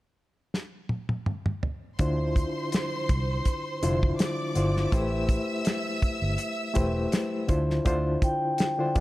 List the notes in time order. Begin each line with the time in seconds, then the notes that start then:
0.54 snare
0.89 high tom
1.09 high tom
1.26 mid tom
1.46 mid tom
1.63 floor tom
1.99 D2 D3 D4 E4 F4 C5 C6, kick, closed hi-hat
2.36 kick, closed hi-hat
2.72 snare, closed hi-hat
3.09 C2, kick, closed hi-hat
3.45 kick, closed hi-hat
3.82 F1 D3 D4 E4 F4 C5, closed hi-hat
4.03 kick
4.19 D5 D6, snare, closed hi-hat
4.55 G1 D3 D4 E4 F4 C5, closed hi-hat
4.77 snare
4.92 A1 A3 E4 G4 B4 C5 E5 E6, kick, closed hi-hat
5.29 kick, closed hi-hat
5.65 snare, closed hi-hat
6.02 muted fingered electric bass stroke, kick, closed hi-hat
6.22 G1
6.38 closed hi-hat
6.74 E1 A3 E4 G4 B4 C5, kick, closed hi-hat
7.12 snare, closed hi-hat
7.47 D2 D3 D4 E4 F4 C5, kick, closed hi-hat
7.70 snare
7.85 D2 D3 D4 E4 F4 C5, kick, closed hi-hat
8.22 G5, kick, closed hi-hat
8.58 snare, closed hi-hat
8.78 D3 D4 E4 F4 C5
8.95 F2 D3 C4 D4 F4 B4, kick, closed hi-hat